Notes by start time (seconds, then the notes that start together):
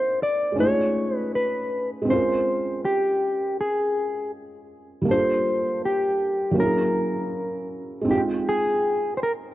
Already playing: A#3 C4 D#4 F#4 C5
0.23 D5
0.52 G#3 C#4
0.59 A3 D#4 F4 C#5
0.66 G#4
1.16 B4
1.35 B4
2.02 G#3 C4
2.09 C#4 F4 C5
2.16 A#4
2.85 G4
3.61 G#4
5.02 G3 A#3
5.08 D4 F4 C5
5.16 A4
5.85 G4
6.51 F#3 A#3
6.58 C#4 E4 A#4
6.65 G#4
8.01 G#3 C4
8.08 D#4 F4 G4
8.15 G5
8.49 G#4
9.17 C5
9.23 A#4